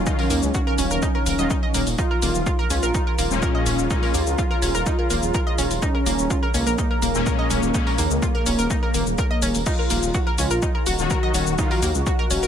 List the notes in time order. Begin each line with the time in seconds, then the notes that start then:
Already playing: F#3 C#4 D#4 F5
0.06 D#3 F#3 D#4 F4 D#5, kick, shaker
0.19 A#4 A#5, open hi-hat
0.30 D#2 A#3 A#4, open hi-hat, shaker
0.43 C#2, shaker
0.54 F#4 F#5, kick, shaker
0.67 A#4 A#5
0.78 D#1 C#4 C#5, open hi-hat, shaker
0.91 D#1 A#4 A#5, shaker
1.02 D#4 D#5, kick, shaker
1.15 A#4 A#5
1.26 D#1 A#4 A#5, open hi-hat, shaker
1.39 D#1 D#3 F#3 F4 D#5 D#6, shaker
1.50 D#4 D#5, kick, shaker
1.63 D#5 D#6
1.74 D#1 A#3 A#4, open hi-hat, shaker
1.87 D#1, open hi-hat, shaker
1.98 D#4 F4 G#4 C#5 D#5 A#5, kick, shaker
2.11 A#4 A#5
2.22 D#1 A#3 A#4, open hi-hat, shaker
2.35 D#1, shaker
2.46 F4 F5, kick, shaker
2.59 A#4 A#5
2.70 C#2 C#4 F4 C#5, open hi-hat, shaker
2.83 A#1 A#4 A#5, shaker
2.94 D#4 D#5, kick, shaker
3.07 A#4 A#5
3.18 D#1 A#3 F4 A#4, open hi-hat, shaker
3.31 D#1 A#2 G#3 C#4, shaker
3.42 A#4 A#5, kick, shaker
3.55 D#5 D#6
3.66 D#1 C#4 C#5, open hi-hat, shaker
3.79 D#1, shaker
3.90 A#2 G#3 C#4 D#4 D#5, kick, shaker
4.03 A#4 A#5, open hi-hat
4.14 D#2 A#3 A#4, open hi-hat, shaker
4.27 C#2, shaker
4.38 F4 F5, kick, shaker
4.51 A#4 A#5
4.62 D#1 C#4 C#5, open hi-hat, shaker
4.75 D#1 A#4 A#5, shaker
4.86 D#4 D#5, kick, shaker
4.99 A#4 A#5
5.10 D#1 A#3 A#4, open hi-hat, shaker
5.23 D#1, shaker
5.34 A#4 A#5, kick, shaker
5.47 D#5 D#6
5.58 D#1 C#4 C#5, open hi-hat, shaker
5.71 D#1, open hi-hat, shaker
5.82 C#4 D#4 D#5, kick, shaker
5.95 A#4 A#5
6.06 D#1 A#3 A#4, open hi-hat, shaker
6.19 D#1, shaker
6.30 F4 F5, kick, shaker
6.43 A#4 A#5
6.54 C#2 A#3 C#4 C#5, open hi-hat, shaker
6.67 A#1 A#4 A#5, shaker
6.78 D#4 D#5, kick, shaker
6.91 A#4 A#5
7.02 D#1 A#3 A#4, open hi-hat, shaker
7.15 D#1 A#2 G#3 C#4, shaker
7.26 A#4 A#5, kick, shaker
7.39 D#5 D#6
7.50 D#1 C#4 C#5, open hi-hat, shaker
7.63 D#1, shaker
7.74 A#2 G#3 C#4 D#4 D#5, kick, shaker
7.87 A#4 A#5, open hi-hat
7.98 D#2 A#3 A#4, open hi-hat, shaker
8.11 C#2, shaker
8.22 F4 F5, kick, shaker
8.35 A#4 A#5
8.46 D#1 C#4 C#5, open hi-hat, shaker
8.59 D#1 A#4 A#5, shaker
8.70 D#4 D#5, kick, shaker
8.83 A#4 A#5
8.94 D#1 A#3 A#4, open hi-hat, shaker
9.07 D#1, shaker
9.18 A#4 A#5, kick, shaker
9.31 D#5 D#6
9.42 D#1 C#4 C#5, open hi-hat, shaker
9.55 D#1, open hi-hat, shaker
9.66 D#4 F4 D#5 F5 A#5, kick, crash, shaker
9.79 A#4 A#5
9.90 D#1 A#3 A#4, open hi-hat, shaker
10.03 D#1, shaker
10.14 F#4 F#5, kick, shaker
10.27 A#4 A#5
10.38 C#2 C#4 F4 C#5, open hi-hat, shaker
10.51 A#1 A#4 A#5, shaker
10.62 D#4 D#5, kick, shaker
10.75 A#4 A#5
10.86 D#1 F#4 F#5, open hi-hat, shaker
10.99 D#1 D#3 F#3 F#4, shaker
11.10 A#4 A#5, kick, shaker
11.23 D#5 D#6
11.34 D#1 C#4 C#5, open hi-hat, shaker
11.47 D#1, shaker
11.58 D#3 F#3 D#4 F4 D#5, kick, shaker
11.71 A#4 A#5, open hi-hat
11.82 D#2 A#3 A#4, open hi-hat, shaker
11.95 C#2, shaker
12.06 F#4 F#5, kick, shaker
12.19 A#4 A#5
12.30 D#1 C#4 C#5, open hi-hat, shaker
12.43 D#1 A#4 A#5, shaker